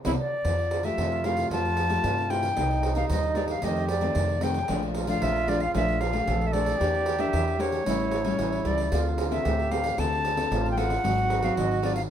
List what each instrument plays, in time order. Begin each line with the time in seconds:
0.05 upright bass C2, nylon-string guitar B3 C4 E4, trombone E4, pandeiro
0.19 flute D5
0.45 upright bass F2, nylon-string guitar F3, trombone F4, pandeiro
0.58 pandeiro
0.71 pandeiro
0.83 nylon-string guitar A3 G4, flute E5, pandeiro
0.98 upright bass F2, nylon-string guitar C3, pandeiro
1.12 pandeiro
1.24 nylon-string guitar A3 E4 G4, flute F5, pandeiro
1.37 pandeiro
1.51 upright bass F2, nylon-string guitar F3 A3 G4, flute A5, pandeiro
1.65 pandeiro
1.77 pandeiro
1.89 nylon-string guitar A3 G4, pandeiro
2.04 upright bass G2, nylon-string guitar C3, pandeiro
2.18 pandeiro
2.30 nylon-string guitar A3 E4 G4, flute G5, pandeiro
2.43 pandeiro
2.55 upright bass C2, nylon-string guitar C3 A#3 D#4 G4, trombone D#4, pandeiro
2.71 pandeiro
2.83 pandeiro
2.95 nylon-string guitar A#3 D#4 G4, flute F5, pandeiro
3.09 upright bass D#2, nylon-string guitar G2, flute D#5, pandeiro
3.23 pandeiro
3.35 nylon-string guitar A#3 D#4 G4, flute D5, pandeiro
3.48 flute F5, pandeiro
3.62 upright bass F2, nylon-string guitar F2 D#3 A3 C4, trombone G4, flute D#5, pandeiro
3.76 pandeiro
3.89 flute D5, pandeiro
4.01 nylon-string guitar D#3 A3 C4, pandeiro
4.15 upright bass F2, nylon-string guitar C3, pandeiro
4.29 pandeiro
4.41 nylon-string guitar D#3 A3 C4, flute G5, pandeiro
4.54 pandeiro
4.68 upright bass A#1, nylon-string guitar A#2 F3 A3 D4, trombone F4, pandeiro
4.82 pandeiro
4.95 pandeiro
5.07 nylon-string guitar F3 A3 D4, flute F5, pandeiro
5.22 upright bass A#1, nylon-string guitar F2, flute E5, pandeiro
5.36 pandeiro
5.47 nylon-string guitar F3 A3 D4, flute D5, pandeiro
5.60 flute F5, pandeiro
5.74 upright bass A#1, nylon-string guitar A#2 F3 A3 D4, flute E5, pandeiro
5.88 pandeiro
6.01 flute F5, pandeiro
6.13 nylon-string guitar F3 A3 D4, pandeiro
6.27 upright bass A#1, nylon-string guitar F2, trombone A4, pandeiro
6.41 pandeiro
6.47 flute E5
6.52 nylon-string guitar F3 A3 D4, flute D5, pandeiro
6.66 pandeiro
6.79 upright bass E2, nylon-string guitar E3 A#3 D4 G4, trombone G4, pandeiro
6.94 pandeiro
7.06 pandeiro
7.18 nylon-string guitar A#3 D4 G4, flute E5, pandeiro
7.33 upright bass E2, nylon-string guitar E3, pandeiro
7.47 pandeiro
7.59 nylon-string guitar A#3 D4 G4, flute C#5, pandeiro
7.72 pandeiro
7.86 upright bass A1, nylon-string guitar A2 G3 C#4 E4, trombone E4, pandeiro
8.00 pandeiro
8.11 pandeiro
8.24 nylon-string guitar G3 C#4 E4, pandeiro
8.39 upright bass A1, nylon-string guitar E3, trombone E4, pandeiro
8.52 pandeiro
8.65 upright bass C#2, nylon-string guitar G3 C#4 E4, flute D5, pandeiro
8.78 pandeiro
8.92 upright bass D2, nylon-string guitar D3 C4 F4 A4, trombone F4, pandeiro
9.06 pandeiro
9.18 pandeiro
9.31 nylon-string guitar C4 F4 A4, flute E5, pandeiro
9.45 upright bass D2, nylon-string guitar A2, trombone G4, pandeiro
9.59 pandeiro
9.71 nylon-string guitar C4 F4 A4, flute F5, pandeiro
9.84 pandeiro
9.98 upright bass D2, nylon-string guitar D3 C4 F4 A4, flute A5, pandeiro
10.12 pandeiro
10.25 pandeiro
10.37 nylon-string guitar C4 F4 A4, pandeiro
10.51 upright bass A1, nylon-string guitar A2, trombone F4, pandeiro
10.66 pandeiro
10.71 flute G5
10.77 nylon-string guitar C4 F4 A4, flute F#5, pandeiro
10.90 pandeiro
11.04 upright bass G#1, nylon-string guitar G#2 F#3 C4, trombone F#4, pandeiro
11.18 pandeiro
11.30 pandeiro
11.42 nylon-string guitar F#3 C4, flute F5, pandeiro
11.57 upright bass G#1, nylon-string guitar D#3, flute D#5, pandeiro
11.71 pandeiro
11.82 nylon-string guitar F#3 C4 F4, flute D5, pandeiro
11.96 flute F5, pandeiro